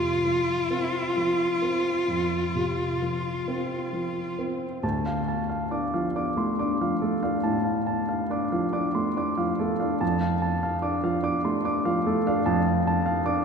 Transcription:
Already playing: F2 C3 F4
0.25 F3
0.70 C4
1.17 F3
1.62 C4
2.08 F2
2.55 C3
3.02 F3
3.48 C4
3.93 F3
4.39 C4
4.83 D2 A5
5.06 F5
5.28 A5
5.49 F5
5.71 D4 D6
5.94 F3 F5
6.16 D4 D6
6.37 A3 C6
6.59 D4 D6
6.81 F3 F5
7.02 A3 A4
7.23 D4 F5
7.43 A2 A5
7.64 F5
7.87 A5
8.09 F5
8.30 D4 D6
8.52 F3 F5
8.73 D4 D6
8.95 A3 C6
9.17 D4 D6
9.38 F3 F5
9.59 A3 A4
9.80 D4 F5
10.01 F2 A5
10.21 F5
10.42 A5
10.63 F5
10.82 D4 D6
11.03 F3 F5
11.23 D4 D6
11.45 A3 C6
11.65 D4 D6
11.85 F3 F5
12.07 A3 A4
12.27 D4 F5
12.46 F2 A5
12.66 F5
12.87 A5
13.06 F5
13.26 D4 D6

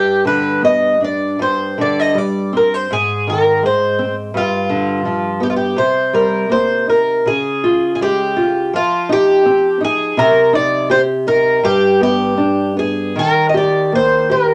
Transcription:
Already playing: G2 G4
0.25 D3 B4
0.62 B3 D#5
1.00 D4 D5
1.39 G2 C5
1.78 D3 D5
2.00 D#5
2.15 G3 D5
2.53 C4
2.57 A#4
2.74 C5
2.91 G#2 G#4
3.27 D#3 A#4
3.63 G#3 C5
3.99 C4
4.34 G2 F4
4.69 D3
5.05 F3
5.40 B3 G4
5.50 F4
5.56 G4
5.76 C3 C5
6.13 G3 A#4
6.50 A#3 C5
6.87 D#4 A#4
7.26 C#3 G#4
7.64 F4
7.95 G#4
8.01 G#3 G4
8.36 F4
8.73 F3 F4
9.09 D#4 G4
9.45 C4
9.81 D#4 G#4
10.17 C3 A#4
10.53 D#4 D5
10.90 G4 C5
11.27 D#4 A#4
11.63 G2 G4
12.01 B3 G4
12.38 D4
12.77 B3 G#4
13.16 D#3 A#4
13.49 D#5
13.54 G4 D5
13.93 A#3 C5
14.30 G4 A#4

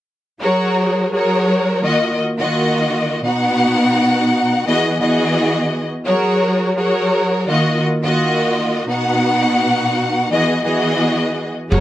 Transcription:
0.40 F#3 F#4 G#4 A#4 C#5
1.12 F#3 F#4 G#4 A#4 C#5
1.81 D#3 A#3 F4 F#4 D#5
2.38 D#3 A#3 F4 F#4 D#5
3.22 B2 B3 D#4 F#4 F#5
4.65 E3 B3 F#4 G#4 D#5
4.99 E3 B3 F#4 G#4 D#5
6.05 F#3 F#4 G#4 A#4 C#5
6.76 F#3 F#4 G#4 A#4 C#5
7.46 D#3 A#3 F4 F#4 D#5
8.02 D#3 A#3 F4 F#4 D#5
8.87 B2 B3 D#4 F#4 F#5
10.30 E3 B3 F#4 G#4 D#5
10.64 E3 B3 F#4 G#4 D#5
11.70 F#1 F#3 F#4 G#4 A#4 C#5

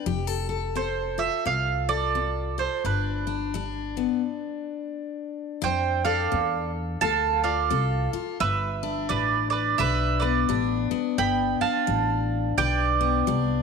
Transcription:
0.06 F1 F3 G4
0.27 A4
0.49 A4
0.75 C4 A4 C5
1.18 F4 E5
1.45 C2 C3 F5
1.89 A4 D5
2.15 C4
2.58 A4 C5
2.84 G1 G2 D4 B4
3.27 D4
3.54 G3 D4
3.97 B3
5.62 F2 F3 C5 G5
6.05 A4 D5 F5
6.32 E2 C4
7.01 D2 C3 A4 F5 A5
7.44 F4 D5 F5
7.70 C2 C4 A4
8.13 F4, muted upright bass stroke
8.40 G1 G2 B4 E5
8.83 D4
9.09 A1 G3 B4 D5
9.50 B4 D5
9.78 B1 D3 B4 E5
10.20 B3 B4 D5
10.49 A1 G3 D4
10.91 B3, muted upright bass stroke
11.18 G1 G2 G5 B5
11.61 D4 F5 A5, muted upright bass stroke
11.87 A1 G3
12.57 B1 D3 B4 D5 G5
13.01 B3
13.27 C2 G3 D4

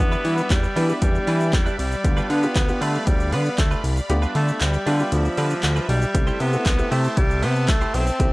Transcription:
Already playing: G3 B3 D5 E5 B5
0.00 E2 B3 D4 E4 F#4, muted clean electric guitar stroke
0.12 G3 D4 E4 B4, shaker
0.24 E3 G3 D4 E4 B4, open hi-hat, shaker
0.38 shaker
0.50 E2 G3, muted clean electric guitar stroke, kick, clap, closed hi-hat, shaker
0.63 muted clean electric guitar stroke, shaker
0.76 E3 G3 B3 D4 E4 G4 B4, open hi-hat, shaker
0.89 G3 B3 D4 E4 G4 B4, shaker
1.02 E2 G3, muted clean electric guitar stroke, kick, closed hi-hat, shaker
1.14 muted clean electric guitar stroke, shaker
1.27 E3 G3 D4 E4 B4, open hi-hat, shaker
1.40 muted clean electric guitar stroke, shaker
1.53 E2, muted clean electric guitar stroke, kick, clap, closed hi-hat, shaker
1.66 G3 D4 E4 B4, shaker
1.79 C2 G3, muted clean electric guitar stroke, open hi-hat, shaker
1.91 muted clean electric guitar stroke, shaker
2.04 D2 B3 D4 F4 G4 F5, muted clean electric guitar stroke, kick, closed hi-hat, shaker
2.17 G3 D4 F4 B4, shaker
2.30 D3 G3 B3 D4 F4 B4, open hi-hat, shaker
2.43 B3 D4 F4 G4, shaker
2.55 D2, muted clean electric guitar stroke, kick, clap, closed hi-hat, shaker
2.68 B3 D4 F4 G4, muted clean electric guitar stroke, shaker
2.81 D3 G3 A3 D4 F4 B4, open hi-hat, shaker
2.94 G3 D4 F4 B4, shaker
3.07 D2 G3, kick, closed hi-hat, shaker
3.20 muted clean electric guitar stroke, shaker
3.32 D3 G3 B3 D4 F4 B4, open hi-hat, shaker
3.45 muted clean electric guitar stroke, shaker
3.58 D2 A3, muted clean electric guitar stroke, kick, clap, closed hi-hat, shaker
3.71 G3 D4 F4 B4, shaker
3.84 C2, open hi-hat, shaker
3.97 muted clean electric guitar stroke, shaker
4.09 D2 B3 D4 F4 G4 E5, muted clean electric guitar stroke, closed hi-hat, shaker
4.22 G3 D4 F4 B4, shaker
4.35 D3 G3 A3 D4 F4 B4, open hi-hat, shaker
4.48 muted clean electric guitar stroke, shaker
4.61 D2 G3, muted clean electric guitar stroke, clap, closed hi-hat, shaker
4.73 muted clean electric guitar stroke, shaker
4.86 D3 G3 B3 D4 F4 G4 B4, open hi-hat, shaker
4.99 G3 B3 D4 F4 G4 B4, shaker
5.12 D2 F3, muted clean electric guitar stroke, closed hi-hat, shaker
5.25 muted clean electric guitar stroke, shaker
5.37 D3 G3 D4 F4 B4, open hi-hat, shaker
5.50 G3 D4 F4 B4, shaker
5.63 D2, clap, closed hi-hat, shaker
5.76 G3 D4 F4 B4, shaker
5.89 B1 G3, muted clean electric guitar stroke, open hi-hat, shaker
6.02 muted clean electric guitar stroke, shaker
6.14 C2 A3 C4 E4 G4 A4 A5 C6, muted clean electric guitar stroke, kick, closed hi-hat, shaker
6.27 A3 E4 G4 C5, shaker
6.40 C3 A3 B3 E4 G4 C5, open hi-hat, shaker
6.53 A3 C4 E4 F#4, shaker
6.66 C2, muted clean electric guitar stroke, kick, clap, closed hi-hat, shaker
6.78 A3 C4 E4 G4, muted clean electric guitar stroke, shaker
6.91 C3 A3 E4 G4 C5, open hi-hat, shaker
7.04 A3 E4 G4 C5, shaker
7.17 C2 G3, muted clean electric guitar stroke, kick, closed hi-hat, shaker
7.30 muted clean electric guitar stroke, shaker
7.42 C3 A3 B3 E4 G4 C5, open hi-hat, shaker
7.55 muted clean electric guitar stroke, shaker
7.68 C2 A3, muted clean electric guitar stroke, kick, clap, closed hi-hat, shaker
7.81 A3 E4 G4 C5, shaker
7.94 B1 A3 C4 E4 G4 C5, open hi-hat, shaker
8.07 muted clean electric guitar stroke, shaker
8.20 C2 A3 C4 E4 G4, muted clean electric guitar stroke, kick, closed hi-hat, shaker

